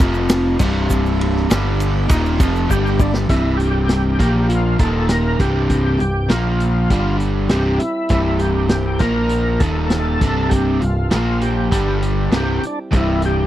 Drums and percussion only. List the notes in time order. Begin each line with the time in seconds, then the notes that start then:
0.00 kick, shaker
0.14 shaker
0.29 snare, ride, shaker
0.59 kick, crash, shaker
0.90 kick, shaker
1.06 shaker
1.21 ride
1.36 snare
1.51 snare, ride, shaker
1.80 ride, shaker
2.09 kick, ride, shaker
2.26 shaker
2.40 kick, ride, shaker
2.55 shaker
2.70 kick, shaker
2.87 shaker
3.00 kick, shaker
3.14 snare, shaker
3.29 kick, closed hi-hat
3.60 closed hi-hat
3.89 snare, closed hi-hat
4.20 kick, closed hi-hat
4.49 closed hi-hat
4.79 kick, closed hi-hat
5.09 snare, closed hi-hat
5.40 kick, closed hi-hat
5.70 kick, closed hi-hat
6.00 closed hi-hat
6.29 snare, closed hi-hat
6.60 closed hi-hat
6.90 kick, closed hi-hat
7.20 closed hi-hat
7.49 snare, closed hi-hat
7.80 closed hi-hat
8.09 kick, closed hi-hat
8.39 closed hi-hat
8.69 snare, closed hi-hat
8.99 kick, closed hi-hat
9.29 closed hi-hat
9.60 kick, closed hi-hat
9.90 snare, closed hi-hat
10.21 kick, snare, closed hi-hat
10.51 kick, closed hi-hat
10.81 closed hi-hat
11.11 snare, closed hi-hat
11.41 closed hi-hat
11.72 kick, closed hi-hat
12.02 closed hi-hat
12.32 snare, closed hi-hat
12.63 closed hi-hat
12.93 kick, closed hi-hat
13.22 closed hi-hat